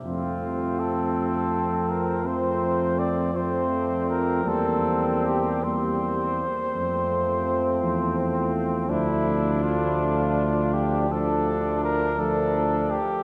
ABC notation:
X:1
M:12/8
L:1/8
Q:3/8=55
K:F
V:1 name="Cornet"
F2 A3 B c2 d c2 B | A2 G c8 z | E2 F3 G A2 B A2 G |]
V:2 name="Flugelhorn"
C6 C3 C3 | C3 C2 z C6 | D6 D3 D2 z |]
V:3 name="Euphonium"
A,6 A,3 A,3 | B,3 B,2 z A,6 | A,6 A,3 A,2 z |]
V:4 name="Trombone" clef=bass
F,6 F,3 F,3 | G,3 G,2 z F,6 | F,6 F,3 F,2 z |]
V:5 name="Tuba" clef=bass
F,,12 | E,,4- E,, z F,,3 E,,3 | D,,8- D,,3 z |]